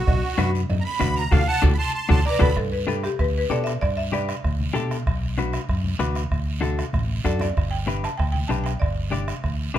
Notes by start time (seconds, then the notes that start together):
Already playing: F#4
0.07 B1, bombo low, cowbell, high conga, low conga, long guiro
0.38 F#2 D4 F#4 B4, bombo rim, cowbell, high conga, short guiro
0.55 short guiro
0.69 F#2, cowbell, high conga, low conga, long guiro
0.81 A#5
0.85 B5
1.00 D2 D4 F#4 B4, bombo low, bombo rim, cowbell, high conga, short guiro
1.16 A#5, short guiro
1.31 D2 D4 F#4 A4 F5, bombo low, high conga, high timbale, long guiro
1.47 F#5 A5
1.62 D2 D4 F#4 A4, bombo low, high conga, high timbale, long guiro
1.74 B5
1.78 A5 C6
1.94 A5 C6
2.09 D2 D4 F#4 A4 A5 C6, bombo low, high conga, high timbale, long guiro
2.26 B4 D5 A#5 D6
2.32 D5
2.39 D2 D4 F#4 A4 B4 B5, bombo low, high conga, high timbale
2.57 G2 A4, bombo low, bombo rim, long guiro
2.72 B4
2.87 D4 G4 A4 B4, bombo rim, high conga, short guiro
3.04 G4, bombo rim, short guiro
3.19 D2 B4, bombo low, bombo rim, long guiro
3.38 B4
3.50 B2 D4 G4 A4 D5, bombo rim, high conga, short guiro
3.64 E5, bombo rim, short guiro
3.81 G2 D5, bombo low, bombo rim, long guiro
3.97 E5
4.12 D4 G4 B4 D5, bombo rim, high conga, short guiro
4.29 bombo rim, short guiro
4.44 D2, bombo low, bombo rim, long guiro
4.60 high conga
4.73 B2 D4 G4 A4, bombo rim, high conga, short guiro
4.91 bombo rim, short guiro
5.07 B1, bombo low, bombo rim, long guiro
5.38 D4 F#4 B4, bombo rim, high conga, short guiro
5.53 bombo rim, short guiro
5.69 F#2, bombo low, bombo rim, long guiro
5.84 high conga
5.99 D2 D4 F#4 B4, bombo rim, high conga, short guiro
6.15 bombo rim, short guiro
6.31 D2, bombo low, bombo rim, long guiro
6.61 D4 F#4 A4, bombo rim, high conga, short guiro
6.79 bombo rim, short guiro
6.93 A1, bombo low, bombo rim, high conga, long guiro
7.25 F#2 D4 F#4 A4 D5, bombo low, bombo rim, short guiro
7.39 D5, bombo rim, low conga, short guiro
7.56 G1, bombo low, bombo rim, long guiro
7.71 G5
7.87 D4 G4 B4, bombo rim, high conga, short guiro
8.04 A5, bombo rim, short guiro
8.18 D2 G5, bombo low, bombo rim, long guiro
8.32 G5, high conga
8.48 B1 D4 G4 B4 A5, bombo rim, high conga, short guiro
8.64 G5, bombo rim, short guiro
8.80 G1 D5, bombo low, bombo rim, long guiro
9.11 D4 G4 D5, bombo rim, high conga, short guiro
9.28 bombo rim, short guiro
9.44 D2, bombo low, bombo rim, long guiro
9.74 B1 D4 G4, high conga